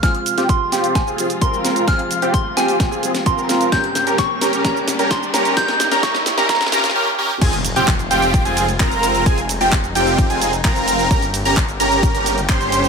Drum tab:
CC |--------------------------------|--------------------------------|--------------------------------|--------------------------------|
RD |--------------------------------|--------------------------------|--------------------------------|--------------------------------|
HH |x-x-o-x-x---o-x-x---o-x-x---o-x-|x-x-o-x-x---o-o-x---o-x-x---o-x-|x-x-o-x-x---o-x-x---o-x-x---o-x-|x-x-o-x-x---o-o-x-x-o-x---------|
SH |x---x-x-x---x-x-x-x-x-x-x-x-x-x-|x---x-x-x---x-x-x-x-x-x-x-x-x-x-|x---x-x-x---x-x-x-x-x-x-x-x-x-x-|x---x-x-x-x-x-x-x-x-x-x---------|
CP |--------------------------------|--------------------------------|--------------------------------|--------------------------------|
SD |o-----o-----o---o-----------o---|o-----------o---o-----o-----o---|o---o---o---o---o---o---o---o---|o-o-o-o-o-o-o-o-oooooooo--------|
BD |o-------o-------o-------o-------|o-------o-------o-------o-------|o-------o-------o-------o-------|o-------o-------o---------------|

CC |x-------------------------------|--------------------------------|--------------------------------|
RD |x---x-------x---x---x-------x---|x---x---x---x---x---x---x---x---|x---x---x---x---x---x-------x---|
HH |x-x-o-x-x-x-o-x-x-x-o-x-x-x-o-x-|x-x-o-x-x-x-o-o-x-x-o-x-x-x-o-x-|x-x-o-x-x-x-o-x-x-x-o-x-x-x-o-x-|
SH |x-x-x-x-x-x-x-x-x-x-x-x-x-x-x-x-|x-x-x-x-x-x-x-x-x-x-x-x-x-x-x-x-|x-x-x-x-x-x-x-x-x-x-x-x-x-x-x-x-|
CP |--------x---------------x-------|--------x---------------x-------|--------x---------------x-------|
SD |--------------------------------|--------------------------------|--------------------------------|
BD |o-------o-------o-------o-------|o-------o-------o-------o-------|o-------o-------o-------o-------|